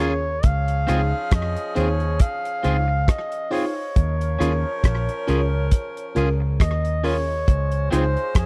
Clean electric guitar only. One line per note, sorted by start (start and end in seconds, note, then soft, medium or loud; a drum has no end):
0.00 0.12 C#4 medium
0.00 0.12 F4 medium
0.00 0.13 G#4 medium
0.87 0.99 C4 loud
0.87 1.00 F4 medium
0.87 1.01 G#4 loud
1.75 1.88 C4 medium
1.75 1.88 F4 medium
1.75 1.89 G#4 medium
2.63 2.75 C4 medium
2.63 2.76 F4 medium
2.63 2.76 G#4 medium
2.88 muted clean electric guitar stroke soft
3.51 3.63 C4 medium
3.51 3.64 F4 medium
3.51 3.65 G#4 medium
4.39 4.51 C#4 medium
4.39 4.52 F4 medium
4.39 4.52 G#4 medium
5.28 5.40 C#4 medium
5.28 5.40 F4 medium
5.28 5.41 G#4 loud
6.16 6.28 C#4 medium
6.16 6.28 F4 medium
6.16 6.29 G#4 loud
6.40 muted clean electric guitar stroke soft
7.04 7.16 C#4 medium
7.04 7.16 F4 medium
7.04 7.16 G#4 medium
7.91 8.03 C4 loud
7.91 8.04 F4 medium
7.91 8.04 G#4 loud